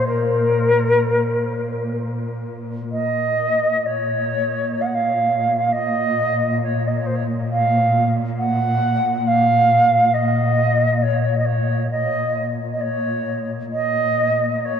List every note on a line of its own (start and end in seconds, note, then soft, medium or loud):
0.00 2.91 A#2 soft
0.07 1.91 A#4 medium
2.91 13.71 A#2 soft
2.91 3.87 D#5 medium
3.85 4.82 C#5 medium
4.81 4.87 F5 medium
4.85 4.95 F#5 medium
4.94 5.73 F5 medium
5.72 6.61 D#5 medium
6.62 6.88 C#5 medium
6.87 6.98 D#5 medium
6.97 7.07 C#5 medium
7.05 7.16 C5 medium
7.15 7.23 C#5 medium
7.51 8.13 F5 medium
8.38 9.28 F#5 medium
9.27 10.15 F5 medium
10.13 11.04 D#5 medium
11.02 11.37 C#5 medium
11.38 11.46 D#5 soft
11.45 11.88 C#5 medium
11.90 12.49 D#5 medium
12.72 12.82 D#5 soft
12.80 13.49 C#5 medium
13.71 14.80 A#2 soft
13.71 14.66 D#5 medium
14.65 14.80 C#5 medium